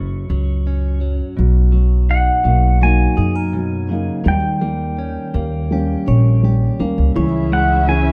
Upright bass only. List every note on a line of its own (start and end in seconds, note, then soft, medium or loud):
0.00 0.24 F#1 medium
0.30 1.20 C#2 medium
1.39 2.28 B1 medium
2.45 3.05 B1 medium
3.17 4.08 F#2 medium
4.25 5.16 D#2 medium
5.34 5.95 D#2 medium
6.07 6.68 A#1 medium
6.80 6.96 D#2 medium
6.98 7.14 C#2 medium
7.16 8.12 C#2 medium